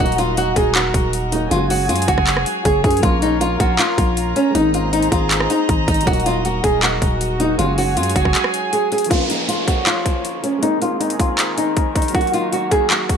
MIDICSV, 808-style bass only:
0, 0, Header, 1, 2, 480
1, 0, Start_track
1, 0, Key_signature, -5, "minor"
1, 0, Tempo, 379747
1, 1912, Time_signature, 4, 2, 24, 8
1, 16647, End_track
2, 0, Start_track
2, 0, Title_t, "808-style bass"
2, 0, Program_c, 0, 38
2, 0, Note_on_c, 0, 27, 119
2, 683, Note_off_c, 0, 27, 0
2, 711, Note_on_c, 0, 27, 103
2, 1172, Note_off_c, 0, 27, 0
2, 1191, Note_on_c, 0, 27, 103
2, 1883, Note_off_c, 0, 27, 0
2, 1912, Note_on_c, 0, 30, 111
2, 2392, Note_on_c, 0, 42, 100
2, 2411, Note_off_c, 0, 30, 0
2, 2620, Note_off_c, 0, 42, 0
2, 2631, Note_on_c, 0, 30, 104
2, 2746, Note_off_c, 0, 30, 0
2, 2752, Note_on_c, 0, 30, 108
2, 2992, Note_on_c, 0, 29, 105
2, 3011, Note_off_c, 0, 30, 0
2, 3106, Note_off_c, 0, 29, 0
2, 3353, Note_on_c, 0, 30, 108
2, 3583, Note_off_c, 0, 30, 0
2, 3591, Note_on_c, 0, 42, 107
2, 3822, Note_off_c, 0, 42, 0
2, 3832, Note_on_c, 0, 34, 117
2, 4523, Note_off_c, 0, 34, 0
2, 4550, Note_on_c, 0, 34, 101
2, 4781, Note_off_c, 0, 34, 0
2, 5031, Note_on_c, 0, 34, 108
2, 5492, Note_off_c, 0, 34, 0
2, 5751, Note_on_c, 0, 32, 112
2, 6443, Note_off_c, 0, 32, 0
2, 6470, Note_on_c, 0, 32, 103
2, 6932, Note_off_c, 0, 32, 0
2, 7193, Note_on_c, 0, 32, 107
2, 7423, Note_off_c, 0, 32, 0
2, 7431, Note_on_c, 0, 32, 109
2, 7662, Note_off_c, 0, 32, 0
2, 7672, Note_on_c, 0, 27, 115
2, 8363, Note_off_c, 0, 27, 0
2, 8390, Note_on_c, 0, 27, 106
2, 8852, Note_off_c, 0, 27, 0
2, 8871, Note_on_c, 0, 27, 107
2, 9563, Note_off_c, 0, 27, 0
2, 9591, Note_on_c, 0, 30, 113
2, 10072, Note_on_c, 0, 42, 104
2, 10091, Note_off_c, 0, 30, 0
2, 10300, Note_off_c, 0, 42, 0
2, 10310, Note_on_c, 0, 30, 103
2, 10426, Note_off_c, 0, 30, 0
2, 10432, Note_on_c, 0, 30, 107
2, 10552, Note_off_c, 0, 30, 0
2, 16647, End_track
0, 0, End_of_file